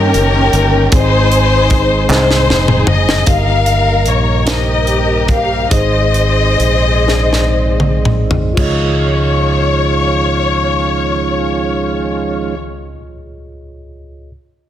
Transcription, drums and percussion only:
0.14 closed hi-hat soft
0.53 closed hi-hat medium
0.92 kick loud
0.92 closed hi-hat loud
1.32 closed hi-hat soft
1.70 kick medium
1.70 closed hi-hat medium
2.10 snare medium
2.10 clap medium
2.31 snare medium
2.50 snare medium
2.68 mid tom medium
2.87 floor tom loud
3.09 snare loud
3.26 kick medium
3.26 closed hi-hat medium
3.66 closed hi-hat soft
4.06 closed hi-hat soft
4.47 snare medium
4.47 closed hi-hat medium
4.87 closed hi-hat soft
5.28 kick medium
5.28 closed hi-hat soft
5.71 kick medium
5.71 closed hi-hat medium
6.14 closed hi-hat soft
6.60 closed hi-hat soft
7.08 snare soft
7.33 snare soft
7.80 mid tom medium
8.05 mid tom medium
8.31 floor tom medium
8.57 kick medium
8.57 crash medium

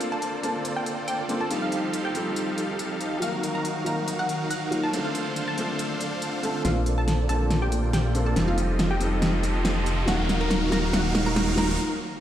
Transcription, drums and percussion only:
0.01 closed hi-hat medium
0.22 closed hi-hat medium
0.43 closed hi-hat medium
0.65 closed hi-hat medium
0.86 closed hi-hat medium
1.08 closed hi-hat medium
1.29 closed hi-hat soft
1.51 closed hi-hat medium
1.72 closed hi-hat medium
1.93 closed hi-hat medium
2.15 closed hi-hat medium
2.36 closed hi-hat medium
2.58 closed hi-hat medium
2.79 closed hi-hat medium
3.01 closed hi-hat medium
3.22 closed hi-hat medium
3.43 closed hi-hat medium
3.65 closed hi-hat medium
3.86 closed hi-hat medium
4.08 closed hi-hat medium
4.29 closed hi-hat medium
4.51 closed hi-hat medium
4.72 closed hi-hat medium
4.93 closed hi-hat medium
5.15 closed hi-hat medium
5.36 closed hi-hat medium
5.58 closed hi-hat medium
5.79 closed hi-hat medium
6.01 closed hi-hat medium
6.22 closed hi-hat medium
6.43 closed hi-hat medium
6.65 snare soft
6.65 closed hi-hat medium
6.86 closed hi-hat medium
7.08 snare medium
7.08 closed hi-hat medium
7.29 closed hi-hat medium
7.51 snare medium
7.51 closed hi-hat medium
7.72 closed hi-hat medium
7.93 snare medium
7.93 closed hi-hat medium
8.15 closed hi-hat medium
8.36 snare medium
8.36 closed hi-hat medium
8.58 closed hi-hat medium
8.79 snare medium
8.79 closed hi-hat medium
9.01 closed hi-hat medium
9.22 snare medium
9.22 closed hi-hat medium
9.43 closed hi-hat medium
9.65 snare medium
9.65 closed hi-hat medium
9.86 closed hi-hat medium
10.08 snare medium
10.08 closed hi-hat medium
10.29 snare medium
10.29 closed hi-hat medium
10.51 snare medium
10.51 closed hi-hat medium
10.72 snare medium
10.72 closed hi-hat medium
10.93 snare medium
10.93 closed hi-hat medium
11.15 snare medium
11.15 closed hi-hat medium
11.36 snare medium
11.36 closed hi-hat medium
11.58 snare medium
11.58 closed hi-hat medium

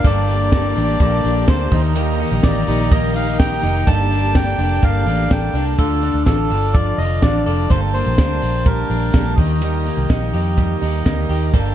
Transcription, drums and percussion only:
0.04 kick loud
0.04 hi-hat pedal medium
0.04 ride medium
0.29 open hi-hat medium
0.52 kick loud
0.52 snare loud
0.52 hi-hat pedal medium
0.52 ride medium
0.76 open hi-hat medium
1.00 kick loud
1.00 hi-hat pedal medium
1.00 ride medium
1.25 open hi-hat medium
1.48 kick loud
1.48 snare loud
1.48 hi-hat pedal medium
1.48 ride medium
1.71 kick loud
1.71 crash medium
1.95 hi-hat pedal medium
1.95 ride medium
2.20 open hi-hat medium
2.43 kick loud
2.43 snare loud
2.43 hi-hat pedal medium
2.43 ride medium
2.67 open hi-hat medium
2.92 kick loud
2.92 hi-hat pedal medium
2.92 ride medium
3.16 open hi-hat medium
3.39 kick loud
3.39 snare loud
3.39 hi-hat pedal medium
3.39 ride medium
3.63 open hi-hat medium
3.87 kick loud
3.87 hi-hat pedal medium
3.87 ride medium
4.12 open hi-hat medium
4.35 kick loud
4.35 snare loud
4.35 hi-hat pedal medium
4.35 ride medium
4.59 open hi-hat medium
4.83 kick loud
4.83 hi-hat pedal medium
4.83 ride medium
5.07 open hi-hat medium
5.31 kick loud
5.31 snare loud
5.31 hi-hat pedal medium
5.31 ride medium
5.55 open hi-hat medium
5.79 kick loud
5.79 ride medium
6.03 open hi-hat medium
6.26 kick loud
6.26 snare loud
6.26 hi-hat pedal medium
6.26 ride medium
6.50 open hi-hat medium
6.75 kick loud
6.75 hi-hat pedal medium
6.75 ride medium
6.99 open hi-hat medium
7.22 kick loud
7.22 snare loud
7.22 hi-hat pedal medium
7.22 ride medium
7.47 open hi-hat medium
7.70 kick loud
7.70 hi-hat pedal medium
7.70 ride medium
7.95 open hi-hat medium
8.18 kick loud
8.18 snare loud
8.18 hi-hat pedal medium
8.18 ride medium
8.42 open hi-hat medium
8.66 kick loud
8.66 hi-hat pedal medium
8.66 ride medium
8.90 open hi-hat medium
9.14 kick loud
9.14 snare loud
9.14 hi-hat pedal medium
9.14 ride medium
9.38 kick loud
9.38 open hi-hat medium
9.62 hi-hat pedal medium
9.62 ride medium
9.87 open hi-hat medium
10.10 kick loud
10.10 snare loud
10.10 ride medium
10.33 open hi-hat medium
10.58 kick loud
10.58 hi-hat pedal medium
10.58 ride medium
10.82 open hi-hat medium
11.06 kick loud
11.06 snare loud
11.06 hi-hat pedal medium
11.06 ride medium
11.30 open hi-hat medium
11.54 kick loud
11.54 hi-hat pedal medium
11.54 ride medium

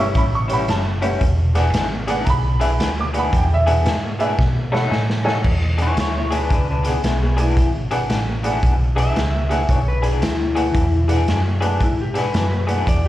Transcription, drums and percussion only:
0.15 kick loud
0.15 snare soft
0.15 closed hi-hat medium
0.49 closed hi-hat medium
0.68 snare loud
0.68 closed hi-hat medium
1.02 closed hi-hat medium
1.21 kick loud
1.21 closed hi-hat medium
1.55 snare soft
1.55 closed hi-hat medium
1.74 snare loud
1.74 closed hi-hat medium
2.08 snare soft
2.08 closed hi-hat medium
2.26 kick loud
2.26 snare soft
2.26 closed hi-hat medium
2.61 closed hi-hat medium
2.80 snare loud
2.80 closed hi-hat medium
3.14 closed hi-hat medium
3.33 kick loud
3.33 snare soft
3.33 closed hi-hat medium
3.67 closed hi-hat medium
3.86 snare loud
3.86 closed hi-hat medium
4.20 closed hi-hat medium
4.39 kick loud
4.39 snare medium
4.75 snare medium
4.92 snare medium
5.10 snare medium
5.27 snare medium
5.44 kick medium
5.44 crash medium
5.78 closed hi-hat medium
5.97 snare loud
5.97 closed hi-hat medium
6.32 snare soft
6.32 closed hi-hat medium
6.50 kick loud
6.50 closed hi-hat medium
6.85 closed hi-hat medium
7.04 snare medium
7.04 closed hi-hat medium
7.38 closed hi-hat medium
7.57 kick loud
7.57 closed hi-hat medium
7.91 closed hi-hat medium
8.10 snare loud
8.10 closed hi-hat medium
8.44 closed hi-hat medium
8.63 kick loud
8.63 closed hi-hat medium
8.98 closed hi-hat medium
9.16 snare loud
9.16 closed hi-hat medium
9.51 closed hi-hat medium
9.69 kick loud
9.69 closed hi-hat medium
10.03 closed hi-hat medium
10.22 snare loud
10.22 closed hi-hat medium
10.56 closed hi-hat medium
10.75 kick loud
10.75 closed hi-hat medium
11.09 closed hi-hat medium
11.28 snare loud
11.28 closed hi-hat medium
11.62 closed hi-hat medium
11.80 kick loud
11.80 closed hi-hat medium
12.15 snare soft
12.15 closed hi-hat medium
12.34 snare loud
12.34 closed hi-hat medium
12.69 closed hi-hat medium
12.87 kick loud
12.87 closed hi-hat medium

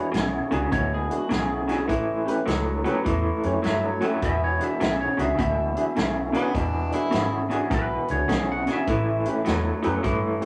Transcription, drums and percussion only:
0.14 snare loud
0.14 closed hi-hat medium
0.52 closed hi-hat medium
0.72 kick loud
0.72 closed hi-hat medium
1.11 closed hi-hat medium
1.31 snare medium
1.31 closed hi-hat medium
1.69 snare soft
1.69 closed hi-hat soft
1.89 kick medium
1.89 closed hi-hat medium
2.28 closed hi-hat medium
2.48 snare loud
2.48 closed hi-hat medium
2.85 closed hi-hat medium
3.06 kick loud
3.06 closed hi-hat medium
3.43 closed hi-hat medium
3.64 snare medium
3.64 closed hi-hat medium
4.02 closed hi-hat medium
4.22 kick medium
4.22 closed hi-hat medium
4.61 closed hi-hat medium
4.81 snare loud
4.81 closed hi-hat medium
5.19 closed hi-hat medium
5.39 kick medium
5.39 closed hi-hat medium
5.77 closed hi-hat medium
5.96 snare medium
5.96 closed hi-hat medium
6.34 closed hi-hat medium
6.55 kick loud
6.55 closed hi-hat medium
6.92 closed hi-hat medium
7.12 snare loud
7.12 closed hi-hat medium
7.51 closed hi-hat medium
7.71 kick loud
7.71 closed hi-hat medium
8.08 closed hi-hat medium
8.29 kick medium
8.29 snare medium
8.29 closed hi-hat medium
8.67 snare soft
8.67 closed hi-hat medium
8.87 kick medium
8.87 closed hi-hat medium
9.25 closed hi-hat medium
9.46 snare loud
9.46 closed hi-hat medium
9.83 closed hi-hat soft
10.04 kick loud
10.04 closed hi-hat medium
10.42 closed hi-hat medium

